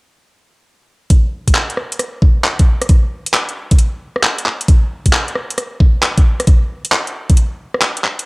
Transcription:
0, 0, Header, 1, 2, 480
1, 0, Start_track
1, 0, Tempo, 447761
1, 1181, Time_signature, 4, 2, 24, 8
1, 8850, End_track
2, 0, Start_track
2, 0, Title_t, "Drums"
2, 1180, Note_on_c, 9, 36, 103
2, 1180, Note_on_c, 9, 42, 60
2, 1287, Note_off_c, 9, 36, 0
2, 1287, Note_off_c, 9, 42, 0
2, 1581, Note_on_c, 9, 36, 57
2, 1582, Note_on_c, 9, 42, 62
2, 1659, Note_on_c, 9, 39, 113
2, 1688, Note_off_c, 9, 36, 0
2, 1689, Note_off_c, 9, 42, 0
2, 1766, Note_off_c, 9, 39, 0
2, 1820, Note_on_c, 9, 42, 33
2, 1899, Note_on_c, 9, 37, 48
2, 1928, Note_off_c, 9, 42, 0
2, 2007, Note_off_c, 9, 37, 0
2, 2059, Note_on_c, 9, 42, 57
2, 2137, Note_off_c, 9, 42, 0
2, 2137, Note_on_c, 9, 37, 52
2, 2137, Note_on_c, 9, 42, 60
2, 2245, Note_off_c, 9, 37, 0
2, 2245, Note_off_c, 9, 42, 0
2, 2380, Note_on_c, 9, 36, 101
2, 2488, Note_off_c, 9, 36, 0
2, 2618, Note_on_c, 9, 39, 97
2, 2725, Note_off_c, 9, 39, 0
2, 2779, Note_on_c, 9, 42, 49
2, 2781, Note_on_c, 9, 36, 96
2, 2886, Note_off_c, 9, 42, 0
2, 2889, Note_off_c, 9, 36, 0
2, 3018, Note_on_c, 9, 37, 53
2, 3018, Note_on_c, 9, 42, 60
2, 3098, Note_off_c, 9, 42, 0
2, 3098, Note_on_c, 9, 42, 57
2, 3101, Note_on_c, 9, 36, 115
2, 3125, Note_off_c, 9, 37, 0
2, 3205, Note_off_c, 9, 42, 0
2, 3208, Note_off_c, 9, 36, 0
2, 3499, Note_on_c, 9, 42, 62
2, 3579, Note_on_c, 9, 39, 114
2, 3606, Note_off_c, 9, 42, 0
2, 3686, Note_off_c, 9, 39, 0
2, 3739, Note_on_c, 9, 42, 33
2, 3846, Note_off_c, 9, 42, 0
2, 3979, Note_on_c, 9, 42, 55
2, 3981, Note_on_c, 9, 36, 103
2, 4058, Note_off_c, 9, 42, 0
2, 4058, Note_on_c, 9, 42, 61
2, 4088, Note_off_c, 9, 36, 0
2, 4165, Note_off_c, 9, 42, 0
2, 4460, Note_on_c, 9, 37, 51
2, 4539, Note_on_c, 9, 39, 104
2, 4567, Note_off_c, 9, 37, 0
2, 4647, Note_off_c, 9, 39, 0
2, 4701, Note_on_c, 9, 42, 49
2, 4779, Note_on_c, 9, 39, 55
2, 4808, Note_off_c, 9, 42, 0
2, 4887, Note_off_c, 9, 39, 0
2, 4941, Note_on_c, 9, 42, 57
2, 5020, Note_on_c, 9, 36, 120
2, 5021, Note_off_c, 9, 42, 0
2, 5021, Note_on_c, 9, 42, 59
2, 5128, Note_off_c, 9, 36, 0
2, 5128, Note_off_c, 9, 42, 0
2, 5421, Note_on_c, 9, 36, 60
2, 5421, Note_on_c, 9, 42, 61
2, 5500, Note_on_c, 9, 39, 112
2, 5528, Note_off_c, 9, 36, 0
2, 5528, Note_off_c, 9, 42, 0
2, 5607, Note_off_c, 9, 39, 0
2, 5661, Note_on_c, 9, 42, 32
2, 5740, Note_on_c, 9, 37, 52
2, 5768, Note_off_c, 9, 42, 0
2, 5847, Note_off_c, 9, 37, 0
2, 5901, Note_on_c, 9, 42, 54
2, 5980, Note_off_c, 9, 42, 0
2, 5980, Note_on_c, 9, 37, 52
2, 5980, Note_on_c, 9, 42, 61
2, 6087, Note_off_c, 9, 37, 0
2, 6087, Note_off_c, 9, 42, 0
2, 6220, Note_on_c, 9, 36, 105
2, 6327, Note_off_c, 9, 36, 0
2, 6461, Note_on_c, 9, 39, 107
2, 6568, Note_off_c, 9, 39, 0
2, 6620, Note_on_c, 9, 42, 45
2, 6621, Note_on_c, 9, 36, 103
2, 6728, Note_off_c, 9, 36, 0
2, 6728, Note_off_c, 9, 42, 0
2, 6860, Note_on_c, 9, 37, 51
2, 6860, Note_on_c, 9, 42, 58
2, 6939, Note_off_c, 9, 42, 0
2, 6939, Note_on_c, 9, 42, 60
2, 6940, Note_on_c, 9, 36, 113
2, 6967, Note_off_c, 9, 37, 0
2, 7046, Note_off_c, 9, 42, 0
2, 7047, Note_off_c, 9, 36, 0
2, 7341, Note_on_c, 9, 42, 61
2, 7419, Note_on_c, 9, 39, 118
2, 7448, Note_off_c, 9, 42, 0
2, 7526, Note_off_c, 9, 39, 0
2, 7581, Note_on_c, 9, 42, 32
2, 7688, Note_off_c, 9, 42, 0
2, 7820, Note_on_c, 9, 42, 57
2, 7822, Note_on_c, 9, 36, 103
2, 7900, Note_off_c, 9, 42, 0
2, 7900, Note_on_c, 9, 42, 60
2, 7929, Note_off_c, 9, 36, 0
2, 8008, Note_off_c, 9, 42, 0
2, 8302, Note_on_c, 9, 37, 50
2, 8379, Note_on_c, 9, 39, 108
2, 8409, Note_off_c, 9, 37, 0
2, 8486, Note_off_c, 9, 39, 0
2, 8543, Note_on_c, 9, 42, 46
2, 8621, Note_on_c, 9, 39, 58
2, 8650, Note_off_c, 9, 42, 0
2, 8728, Note_off_c, 9, 39, 0
2, 8782, Note_on_c, 9, 42, 59
2, 8850, Note_off_c, 9, 42, 0
2, 8850, End_track
0, 0, End_of_file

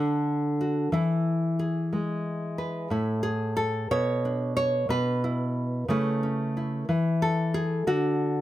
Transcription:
0, 0, Header, 1, 2, 480
1, 0, Start_track
1, 0, Key_signature, 3, "major"
1, 0, Tempo, 660793
1, 675, Time_signature, 6, 3, 24, 8
1, 6110, End_track
2, 0, Start_track
2, 0, Title_t, "Nylon-string guitar"
2, 0, Program_c, 0, 24
2, 0, Note_on_c, 0, 50, 63
2, 0, Note_on_c, 0, 62, 58
2, 0, Note_on_c, 0, 69, 62
2, 441, Note_on_c, 0, 66, 48
2, 649, Note_off_c, 0, 62, 0
2, 649, Note_off_c, 0, 66, 0
2, 666, Note_off_c, 0, 50, 0
2, 669, Note_on_c, 0, 52, 67
2, 679, Note_on_c, 0, 64, 55
2, 1158, Note_on_c, 0, 68, 53
2, 1397, Note_off_c, 0, 69, 0
2, 1399, Note_on_c, 0, 56, 55
2, 1876, Note_on_c, 0, 71, 49
2, 2084, Note_off_c, 0, 52, 0
2, 2087, Note_off_c, 0, 71, 0
2, 2088, Note_off_c, 0, 68, 0
2, 2089, Note_off_c, 0, 56, 0
2, 2089, Note_off_c, 0, 64, 0
2, 2109, Note_on_c, 0, 45, 60
2, 2116, Note_on_c, 0, 64, 45
2, 2342, Note_off_c, 0, 64, 0
2, 2345, Note_on_c, 0, 68, 76
2, 2590, Note_on_c, 0, 69, 81
2, 2831, Note_off_c, 0, 68, 0
2, 2833, Note_off_c, 0, 45, 0
2, 2833, Note_off_c, 0, 69, 0
2, 2839, Note_on_c, 0, 47, 69
2, 2841, Note_on_c, 0, 73, 93
2, 3087, Note_on_c, 0, 62, 43
2, 3308, Note_off_c, 0, 73, 0
2, 3317, Note_on_c, 0, 73, 84
2, 3529, Note_off_c, 0, 47, 0
2, 3533, Note_off_c, 0, 62, 0
2, 3551, Note_on_c, 0, 47, 61
2, 3557, Note_off_c, 0, 73, 0
2, 3562, Note_on_c, 0, 71, 85
2, 3806, Note_on_c, 0, 64, 45
2, 4245, Note_off_c, 0, 47, 0
2, 4253, Note_off_c, 0, 64, 0
2, 4274, Note_on_c, 0, 49, 73
2, 4285, Note_on_c, 0, 57, 50
2, 4288, Note_on_c, 0, 64, 44
2, 4289, Note_on_c, 0, 61, 48
2, 4517, Note_off_c, 0, 61, 0
2, 4526, Note_on_c, 0, 61, 44
2, 4762, Note_off_c, 0, 64, 0
2, 4771, Note_on_c, 0, 64, 43
2, 4967, Note_off_c, 0, 49, 0
2, 4972, Note_off_c, 0, 57, 0
2, 4972, Note_off_c, 0, 61, 0
2, 4999, Note_off_c, 0, 71, 0
2, 5003, Note_on_c, 0, 52, 67
2, 5246, Note_on_c, 0, 69, 76
2, 5476, Note_off_c, 0, 64, 0
2, 5479, Note_on_c, 0, 68, 79
2, 5691, Note_off_c, 0, 52, 0
2, 5716, Note_on_c, 0, 50, 69
2, 5717, Note_off_c, 0, 68, 0
2, 5720, Note_on_c, 0, 66, 85
2, 5721, Note_off_c, 0, 69, 0
2, 6110, Note_off_c, 0, 50, 0
2, 6110, Note_off_c, 0, 66, 0
2, 6110, End_track
0, 0, End_of_file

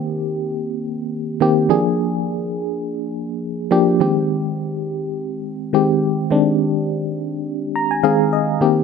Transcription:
0, 0, Header, 1, 2, 480
1, 0, Start_track
1, 0, Tempo, 576923
1, 1412, Time_signature, 4, 2, 24, 8
1, 7353, End_track
2, 0, Start_track
2, 0, Title_t, "FM electric piano"
2, 0, Program_c, 0, 5
2, 0, Control_c, 0, 64, 127
2, 0, Note_on_c, 0, 51, 86
2, 0, Note_on_c, 0, 58, 80
2, 0, Note_on_c, 0, 60, 75
2, 0, Note_on_c, 0, 67, 91
2, 258, Note_off_c, 0, 51, 0
2, 260, Note_off_c, 0, 58, 0
2, 261, Note_off_c, 0, 60, 0
2, 265, Note_off_c, 0, 67, 0
2, 1169, Note_on_c, 0, 51, 84
2, 1174, Note_on_c, 0, 58, 80
2, 1178, Note_on_c, 0, 60, 74
2, 1181, Note_on_c, 0, 67, 95
2, 1366, Note_off_c, 0, 51, 0
2, 1369, Note_off_c, 0, 58, 0
2, 1371, Note_off_c, 0, 60, 0
2, 1372, Note_off_c, 0, 67, 0
2, 1407, Note_on_c, 0, 53, 78
2, 1412, Note_on_c, 0, 58, 74
2, 1414, Note_on_c, 0, 62, 76
2, 1417, Note_on_c, 0, 68, 93
2, 1423, Control_c, 0, 64, 0
2, 1564, Control_c, 0, 64, 127
2, 2177, Note_off_c, 0, 53, 0
2, 2179, Note_off_c, 0, 58, 0
2, 2181, Note_off_c, 0, 62, 0
2, 2182, Note_off_c, 0, 68, 0
2, 3086, Note_on_c, 0, 53, 87
2, 3086, Note_on_c, 0, 58, 75
2, 3092, Note_on_c, 0, 62, 79
2, 3094, Note_on_c, 0, 67, 93
2, 3285, Note_off_c, 0, 53, 0
2, 3285, Note_off_c, 0, 58, 0
2, 3288, Note_off_c, 0, 62, 0
2, 3289, Note_off_c, 0, 67, 0
2, 3329, Note_on_c, 0, 51, 81
2, 3331, Note_on_c, 0, 56, 67
2, 3335, Note_on_c, 0, 60, 71
2, 3338, Note_on_c, 0, 67, 85
2, 3344, Control_c, 0, 64, 0
2, 3465, Control_c, 0, 64, 127
2, 4098, Note_off_c, 0, 51, 0
2, 4099, Note_off_c, 0, 56, 0
2, 4101, Note_off_c, 0, 60, 0
2, 4103, Note_off_c, 0, 67, 0
2, 4767, Note_on_c, 0, 51, 77
2, 4772, Note_on_c, 0, 56, 74
2, 4776, Note_on_c, 0, 60, 70
2, 4781, Note_on_c, 0, 67, 86
2, 5161, Note_off_c, 0, 51, 0
2, 5163, Note_off_c, 0, 56, 0
2, 5165, Note_off_c, 0, 60, 0
2, 5168, Note_off_c, 0, 67, 0
2, 5246, Note_on_c, 0, 51, 77
2, 5251, Note_on_c, 0, 56, 73
2, 5252, Note_on_c, 0, 60, 73
2, 5257, Note_on_c, 0, 62, 86
2, 6017, Note_off_c, 0, 51, 0
2, 6019, Note_off_c, 0, 56, 0
2, 6020, Note_off_c, 0, 60, 0
2, 6022, Note_off_c, 0, 62, 0
2, 6452, Note_on_c, 0, 82, 72
2, 6575, Note_off_c, 0, 82, 0
2, 6580, Note_on_c, 0, 80, 64
2, 6682, Note_off_c, 0, 80, 0
2, 6682, Note_on_c, 0, 51, 79
2, 6684, Note_on_c, 0, 77, 70
2, 6685, Note_on_c, 0, 56, 75
2, 6687, Note_on_c, 0, 60, 75
2, 6692, Note_on_c, 0, 68, 88
2, 6911, Note_off_c, 0, 77, 0
2, 6929, Note_on_c, 0, 75, 69
2, 7079, Note_off_c, 0, 51, 0
2, 7080, Note_off_c, 0, 56, 0
2, 7081, Note_off_c, 0, 60, 0
2, 7083, Note_off_c, 0, 68, 0
2, 7153, Note_off_c, 0, 75, 0
2, 7160, Note_on_c, 0, 51, 80
2, 7165, Note_on_c, 0, 58, 74
2, 7166, Note_on_c, 0, 60, 72
2, 7171, Note_on_c, 0, 67, 87
2, 7184, Control_c, 0, 64, 0
2, 7322, Control_c, 0, 64, 127
2, 7353, Note_off_c, 0, 51, 0
2, 7353, Note_off_c, 0, 58, 0
2, 7353, Note_off_c, 0, 60, 0
2, 7353, Note_off_c, 0, 67, 0
2, 7353, End_track
0, 0, End_of_file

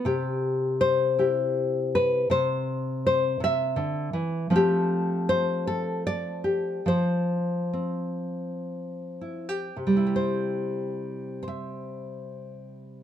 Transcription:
0, 0, Header, 1, 2, 480
1, 0, Start_track
1, 0, Key_signature, 0, "major"
1, 0, Tempo, 743494
1, 34, Time_signature, 6, 3, 24, 8
1, 3394, Tempo, 792602
1, 4354, Tempo, 879765
1, 4834, Tempo, 972447
1, 5314, Tempo, 1067616
1, 5794, Tempo, 1113173
1, 7204, End_track
2, 0, Start_track
2, 0, Title_t, "Nylon-string guitar"
2, 0, Program_c, 0, 24
2, 32, Note_on_c, 0, 48, 57
2, 38, Note_on_c, 0, 67, 75
2, 522, Note_on_c, 0, 72, 84
2, 761, Note_off_c, 0, 67, 0
2, 766, Note_on_c, 0, 64, 40
2, 770, Note_on_c, 0, 67, 41
2, 1245, Note_off_c, 0, 72, 0
2, 1260, Note_on_c, 0, 71, 81
2, 1453, Note_off_c, 0, 48, 0
2, 1458, Note_off_c, 0, 64, 0
2, 1484, Note_on_c, 0, 48, 55
2, 1490, Note_off_c, 0, 71, 0
2, 1492, Note_on_c, 0, 72, 91
2, 1966, Note_off_c, 0, 72, 0
2, 1979, Note_on_c, 0, 72, 79
2, 2189, Note_off_c, 0, 48, 0
2, 2196, Note_on_c, 0, 48, 54
2, 2208, Note_off_c, 0, 72, 0
2, 2220, Note_on_c, 0, 76, 97
2, 2429, Note_on_c, 0, 50, 60
2, 2435, Note_off_c, 0, 48, 0
2, 2666, Note_off_c, 0, 50, 0
2, 2668, Note_on_c, 0, 52, 58
2, 2904, Note_off_c, 0, 52, 0
2, 2906, Note_on_c, 0, 53, 65
2, 2910, Note_on_c, 0, 60, 42
2, 2911, Note_on_c, 0, 57, 42
2, 2922, Note_off_c, 0, 76, 0
2, 2926, Note_off_c, 0, 67, 0
2, 2942, Note_on_c, 0, 67, 85
2, 3414, Note_on_c, 0, 72, 88
2, 3636, Note_off_c, 0, 72, 0
2, 3647, Note_on_c, 0, 69, 75
2, 3872, Note_off_c, 0, 69, 0
2, 3876, Note_off_c, 0, 67, 0
2, 3884, Note_on_c, 0, 74, 87
2, 4111, Note_on_c, 0, 67, 41
2, 4322, Note_off_c, 0, 53, 0
2, 4323, Note_off_c, 0, 57, 0
2, 4362, Note_on_c, 0, 53, 60
2, 4365, Note_off_c, 0, 74, 0
2, 4374, Note_on_c, 0, 72, 77
2, 4379, Note_off_c, 0, 67, 0
2, 4834, Note_off_c, 0, 60, 0
2, 4840, Note_on_c, 0, 60, 37
2, 5548, Note_on_c, 0, 64, 29
2, 5671, Note_off_c, 0, 64, 0
2, 5671, Note_on_c, 0, 67, 29
2, 5767, Note_off_c, 0, 53, 0
2, 5795, Note_off_c, 0, 67, 0
2, 5795, Note_on_c, 0, 48, 43
2, 5802, Note_off_c, 0, 72, 0
2, 5839, Note_on_c, 0, 55, 44
2, 5880, Note_off_c, 0, 60, 0
2, 5882, Note_on_c, 0, 64, 43
2, 5925, Note_on_c, 0, 67, 37
2, 5965, Note_on_c, 0, 72, 64
2, 6506, Note_off_c, 0, 72, 0
2, 6510, Note_off_c, 0, 64, 0
2, 6512, Note_on_c, 0, 72, 53
2, 6532, Note_off_c, 0, 67, 0
2, 6533, Note_on_c, 0, 76, 49
2, 7204, Note_off_c, 0, 48, 0
2, 7204, Note_off_c, 0, 55, 0
2, 7204, Note_off_c, 0, 72, 0
2, 7204, Note_off_c, 0, 76, 0
2, 7204, End_track
0, 0, End_of_file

